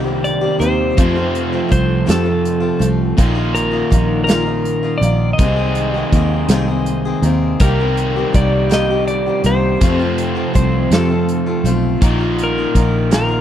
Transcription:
Already playing: C2 C3 D#3 G3 C4 G4
0.04 A#3 C4 G4
0.24 D5, closed hi-hat
0.41 A#3 C4 G4
0.59 D#2 D#3 A#3 C4 G4 C5, closed hi-hat
0.97 F2 C3 F3 A3 C4 F4, kick, closed hi-hat
1.15 F3 A3 C4 F4
1.35 closed hi-hat
1.52 F3 A3 C4 F4
1.69 C2 F3 A3 C4 F4 C5, kick, closed hi-hat
2.06 F2 C3 F3 A3 C4 F4, closed hi-hat
2.10 A4, snare
2.23 F3 A3 C4 F4
2.45 closed hi-hat
2.60 F3 A3 C4 F4
2.79 C2 F3 A3 C4 F4, closed hi-hat
3.17 A#1 A#2 D#3 A#3 D#4 F4, kick, closed hi-hat
3.35 A#3 D#4 F4
3.55 A#4, closed hi-hat
3.71 A#3 D#4 F4
3.90 A#1 D#3 A#3 D#4 F4, kick, closed hi-hat
4.24 A#2 D#3 A#4
4.28 A#3 D#4 F4, snare, closed hi-hat
4.45 A#3 D#4 F4
4.65 closed hi-hat
4.83 A#3 D#4 F4
4.98 A#1 D#3 D5
5.02 A#3 D#4 F4, closed hi-hat
5.33 D#5
5.39 C2 C3 D#3 G#3 A#3 C4 G#4, kick, closed hi-hat
5.56 A#3 C4 G#4
5.75 closed hi-hat
5.94 A#3 C4 G#4
6.12 D#2 D#3 A#3 C4 G#4, kick, closed hi-hat
6.49 C2 C3 D#3 A#3 C4 G#4, snare, closed hi-hat
6.68 A#3 C4 G#4
6.86 closed hi-hat
7.05 A#3 C4 G#4
7.22 D#2 D#3 A#3 C4 G#4, closed hi-hat
7.60 C2 C3 D#3 G3 A#3 C4 G4 A#4, kick, closed hi-hat
7.80 A#3 C4 G4
7.97 closed hi-hat
8.16 A#3 C4 G4
8.33 C2 D#3 A#3 C4 G4 D5, kick, closed hi-hat
8.70 C3 D#3 A#3 C4 G4 D#5, snare, closed hi-hat
8.90 A#3 C4 G4
9.08 D5, closed hi-hat
9.26 A#3 C4 G4
9.44 C2 D#3 A#3 C4 C5, closed hi-hat
9.48 G4
9.81 F2 C3 F3 A3 C4 F4, kick, closed hi-hat
9.99 F3 A3 C4 F4
10.18 closed hi-hat
10.35 F3 A3 C4 F4
10.54 C2 F3 A3 C4 F4 C5, kick, closed hi-hat
10.91 F2 C3 F3 A3 C4 F4 A4, snare, closed hi-hat
11.09 F3 A3 C4 F4
11.29 closed hi-hat
11.46 F3 A3 C4 F4
11.64 B1 F3 A3 C4 F4, closed hi-hat
12.02 A#1 A#2 D#3 A#3 D#4 F4, kick, closed hi-hat
12.20 A#3 D#4 F4
12.39 closed hi-hat
12.43 A#4
12.58 A#3 D#4 F4
12.75 A#1 D#3 A#3 D#4 F4, kick, closed hi-hat
13.11 A#2 D#3 A#3 D#4 F4 A#4, snare, closed hi-hat
13.28 A#3 D#4 F4

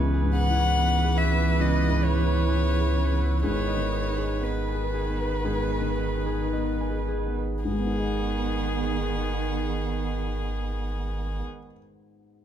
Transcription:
Already playing: C#2 E3 B3 C#4 E4 G#4 B4 G#5 B5
0.14 G#4
0.23 G#2
0.34 G#4 F#5
0.49 E4
0.54 C#4
0.77 B3
0.96 B4
1.04 G#4
1.16 C#4 E5
1.32 B3
1.38 E4
1.59 C#2 C#4 D#5
1.82 B4
1.88 G#2
2.03 B4 C#5
2.19 E4
2.26 C#4
2.49 B3 G#4
2.73 B4
2.80 G#4
2.96 C#4
3.12 B3
3.19 E4
3.43 G#1 G#2 D#3 B3 D#4 G#4 B4 C#5
3.67 D#5
3.77 D#3
3.92 D#5
4.09 D#4
4.18 G#4
4.41 D#3 B3 B4
4.68 G#5
4.74 G#4
4.94 G#4
5.09 B3
5.19 B4
5.44 G#2 G#4
5.72 G#5
5.81 D#3
5.99 G#5
6.17 D#4
6.26 G#4
6.53 B3 D#5
6.80 G#5
6.90 G#4
7.08 G#4
7.26 B3
7.37 B4
7.64 G#1 G#2 D#3 B3 D#4 G#4
7.72 G#3
7.79 B3
7.86 D#4
7.93 G#4
8.00 D#5

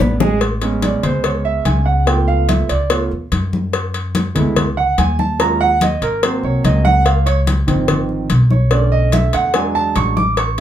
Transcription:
Already playing: B3 B4 D5
0.00 A1, high conga
0.20 G#3 G#4 G#5, low bongo, high conga
0.41 cowbell, high conga
0.62 G#3 B3 C#4, cowbell, high conga
0.82 D5, cowbell, high conga
1.03 C#2 C5, cowbell, high conga, low conga
1.24 C#5, cowbell, high conga
1.45 E5, high conga
1.65 C#2 G#5, cowbell, high conga
1.86 F#5
2.06 A3 B3 F4 G5, cowbell, high conga
2.28 F5, high conga
2.49 E5, cowbell, high conga
2.69 C#2 D5, cowbell, high conga
2.90 A3 B3 F4 C#5, cowbell, high conga
3.11 E2, high conga
3.32 F#2, cowbell, high conga
3.53 high conga
3.73 cowbell, high conga
3.94 cowbell, high conga
4.15 cowbell, high conga
4.35 C#2 G#3 A3 B3 E4, cowbell, high conga, low conga
4.56 cowbell, high conga, low conga
4.77 F#5, high conga
4.98 D#2 G#5, cowbell, high conga
5.19 A5, high conga
5.39 F#3 G#3 C#4 F4 A#5, cowbell, high conga
5.60 F#5, high conga
5.81 D#5, cowbell, high conga
6.02 G#1 A#4, cowbell, high conga
6.23 F#3 A#3 C4 C5, cowbell, high conga
6.43 C2 C#5, high conga
6.64 C#2 D#5, cowbell, high conga
6.85 F#5, high conga
7.05 F5, cowbell, high conga
7.26 C#5, cowbell, high conga
7.47 cowbell, high conga
7.67 G#1 D#3 F3 C4, cowbell, high conga, low conga
7.88 cowbell, high conga, low conga
8.09 high conga
8.30 B1, cowbell, high conga
8.51 C#5, high conga
8.71 D3 A3 C#4 D5, cowbell, high conga
8.92 D#5, high conga
9.12 E5, cowbell, high conga
9.33 E2 F#5, cowbell, high conga
9.54 F#3 G#3 D4 G#5, cowbell, high conga
9.75 A5, high conga
9.96 A1 C#6, cowbell, high conga
10.17 D6, high conga
10.37 C#6, cowbell, high conga

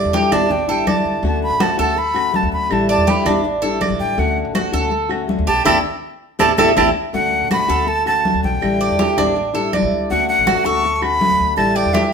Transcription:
Already playing: D3 G3 D4 E4 D5
0.05 E2
0.13 D3 G3 D4 E4 G4 G5, high conga
0.31 A1 G3 D4 E4 A5, high conga, low conga, claves
0.49 G5, muted nylon-string guitar stroke, high conga, low conga
0.68 G3 D4 E4 A4 G5, high conga
0.86 E2 D3 G3 D4 E4 D5 A5, high conga, claves
1.05 D2, high conga
1.23 D2 D3 A3 C#4 F#4 A5, high conga
1.43 B5, high conga
1.50 A1
1.59 D3 A3 C#4 F#4 A5, high conga, claves
1.77 D2 A3 C#4 F#4 A4 A5
1.96 B5, muted nylon-string guitar stroke, high conga
2.14 A3 C#4 F#4, high conga, claves
2.32 D3 A3 C#4 F#4 A5, high conga
2.43 D2
2.52 D2 B5
2.70 A1 D3 G3 D4 E4 A5, high conga, claves
2.89 D5 A5, high conga
2.97 E2
3.07 D3 G3 D4 E4 G4 B5, high conga
3.25 A1 G3 D4 E4, high conga, low conga, claves
3.44 muted nylon-string guitar stroke, high conga
3.62 G3 D4 E4 A4, high conga
3.81 D3 G3 D4 E4 D5, high conga, claves
3.90 A1
3.99 A1 G5, high conga
4.17 D2 D3 A3 C#4 F#4 F#5, high conga
4.37 high conga
4.54 D3 A3 C#4 F#4, high conga, claves
4.72 D2 A3 C#4 F#4 A4
4.91 muted nylon-string guitar stroke, high conga
5.09 A3 C#4 F#4, high conga, claves
5.28 D3 A3 C#4 F#4, high conga
5.39 D2
5.47 B1 G4 A5
5.65 A1 A3 D4 E4 G4 A4 A5, low conga, claves
6.39 A1 A3 D4 E4 G4 A4 A5, low conga, claves
6.58 A1 A3 D4 E4 G4 A4 A5, low conga, claves
6.77 A1 A3 D4 E4 G4 A4 A5, low conga, claves
7.13 D2 D3 A3 C#4 F#4 F#5, high conga
7.32 high conga
7.41 A1
7.51 D3 A3 C#4 F#4 B5, high conga, claves
7.68 D2 A3 C#4 F#4 A4
7.87 A5, muted nylon-string guitar stroke, high conga
8.06 A3 C#4 F#4 A5, high conga, claves
8.25 D3 A3 C#4 F#4, high conga
8.34 D2
8.43 B1 G5, high conga
8.61 A1 D3 G3 D4 E4, high conga, claves
8.81 D5, high conga
8.90 E2
8.98 D3 G3 D4 E4 G4, high conga
9.17 A1 G3 D4 E4, high conga, low conga, claves
9.35 muted nylon-string guitar stroke, high conga
9.54 G3 D4 E4 A4, high conga
9.73 D3 G3 D4 E4 D5, high conga, claves
9.82 A1
9.92 C#2, high conga
10.10 D2 D3 A3 C#4 F#4 F#5, high conga
10.29 F#5, high conga
10.38 A1
10.47 D3 A3 C#4 F#4, high conga, claves
10.65 D2 A3 C#4 F#4 A4 C#6
10.85 muted nylon-string guitar stroke, high conga
10.96 C#6
11.02 A3 C#4 F#4 B5, high conga, claves
11.20 D3 A3 C#4 F#4, high conga
11.30 D2
11.40 D2
11.57 A1 D3 G3 D4 E4 A5, high conga, claves
11.76 D5 G5, high conga
11.85 E2
11.93 D3 G3 D4 E4 G4 E5, high conga

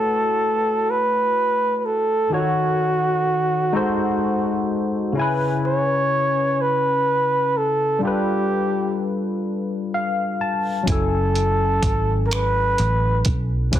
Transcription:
Already playing: A3 E4 F#4 A4 B4 C#5
0.90 B4
1.78 B4
1.85 A4
2.30 D#3 D#4 F4 F#4 A4
2.34 F#4 C#5
3.73 G#3 D#4 F#4 A4 C5
5.12 C#3 C#4
5.17 E4 G#5
5.21 B4
5.66 C#5
6.61 B4
7.57 A4
7.99 G3 D4 F4
8.04 G4 A4 B4
9.94 F5
10.41 A5
10.83 F#3 C#4
10.87 F#1 E4 A4 G#5, kick, closed hi-hat
10.92 A4
11.35 closed hi-hat
11.83 G#1, kick, closed hi-hat
12.26 A#4
12.31 B4, finger snap, closed hi-hat
12.78 A1, closed hi-hat
13.25 B1, kick, closed hi-hat
13.71 C#2 C#3 C#4 E4 G4, kick, closed hi-hat
13.75 B4 C#5

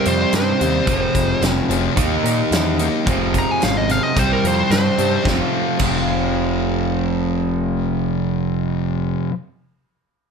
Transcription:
Already playing: C3 D#3 G3 C4 D#4 G4
0.05 F2 C5, closed hi-hat
0.33 G2 C3 D#3 C4 D#4 G4 C5, snare, closed hi-hat
0.59 D#2 C3 G3 C4 D#4 G4, closed hi-hat
0.87 F1 F2 C3 F3 G#3 C4 G#4, kick, closed hi-hat
1.14 F1 F3 G#3 C4 G#4, kick, closed hi-hat
1.41 F1 F2 C3 F3 G#3 C4 G#4, snare, closed hi-hat
1.69 F1 F2 C3 F3 G#3 C4 G#4, closed hi-hat
1.73 F3
1.97 D#2 D#3 A#3 D#4 G4, kick, closed hi-hat
2.24 A#2, closed hi-hat
2.51 E2 D#3 A#3 D#4 G4, snare, closed hi-hat
2.78 D#3 A#3 D#4 G4, closed hi-hat
3.06 F1 F2 C3 F3 G#3 C4 G#4, kick, closed hi-hat
3.34 F3 G#3 C4 G#4, kick, closed hi-hat
3.39 A#5
3.51 G#5
3.60 G#1 F2 C3 F3 G#3 C4 G#4 F5, snare, closed hi-hat
3.77 D#5
3.88 F2 C3 F3 G#3 C4 G#4 F5, closed hi-hat
4.03 D#5
4.14 C2 C3 D#3 G3 C4 D#4 G4, kick, closed hi-hat
4.19 C5
4.33 A#4
4.44 F2 C5, closed hi-hat
4.70 G2 C3 D#3 C4 D#4 G4 C5, snare, closed hi-hat
4.97 G2 C3 G3 C4 D#4 G4, closed hi-hat
5.01 C4
5.22 F1 F2 C3, kick
5.27 F3 G#3 C4, snare
5.31 F4
5.77 F1 F2 C3 F3, kick, crash
5.83 G#3 C4 F4

